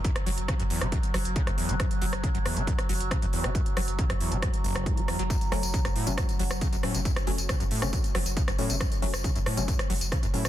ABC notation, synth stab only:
X:1
M:4/4
L:1/16
Q:1/4=137
K:F#m
V:1 name="Synth stab"
z16 | z16 | z16 | z2 [F,A,C] z4 [F,A,C] z6 [F,A,C] z |
z2 [F,A,C] z4 [F,A,C] z6 [F,A,C] z | z2 [F,A,C] z4 [F,A,C] z6 [F,A,C] z |]